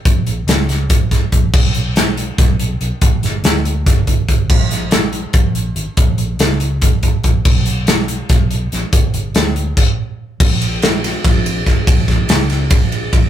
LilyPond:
<<
  \new Staff \with { instrumentName = "Fingered electric bass" } { \clef bass \time 7/8 \key ais \phrygian \tempo 4 = 142 ais,,8 ais,,8 cis,4 ais,,4 ais,,8 | b,,2 b,,4 b,,16 r16 | g,,8 g,,8 d,4 g,,4 g,,8 | ais,,2 ais,,4 gis,,16 r16 |
ais,,8 ais,,8 cis,4 ais,,4 ais,,8 | b,,2 b,,4 ais,,16 r16 | g,,8 g,,8 d,4 r4. | ais,,2 ais,,4 gis,,16 r16 |
ais,,8 ais,,8 cis,4 ais,,4 ais,,8 | }
  \new DrumStaff \with { instrumentName = "Drums" } \drummode { \time 7/8 <hh bd>8 hh8 <hh sn>8 <hh sn>8 <hh bd>8 <hh bd sn>8 <hh bd>8 | <cymc bd>8 hh8 <hh sn>8 hh8 <hh bd sn>8 hh8 hh8 | <hh bd>8 <hh sn>8 <hh sn>8 hh8 <hh bd sn>8 <hh bd>8 <hh bd>8 | <cymc bd>8 <hh sn>8 <hh sn>8 hh8 <hh bd>8 hh8 hh8 |
<hh bd>8 hh8 <hh sn>8 hh8 <hh bd>8 <hh bd>8 <hh bd>8 | <cymc bd>8 hh8 <hh sn>8 hh8 <hh bd sn>8 hh8 <hh sn>8 | <hh bd>8 hh8 <hh sn>8 hh8 <cymc bd>4. | <cymc bd>8 cymr8 <cymr sn>8 <cymr sn>8 <bd cymr sn>8 cymr8 <bd cymr sn>8 |
<bd cymr>8 <bd cymr sn>8 <cymr sn>8 <cymr sn>8 <bd cymr>8 cymr8 <bd cymr>8 | }
>>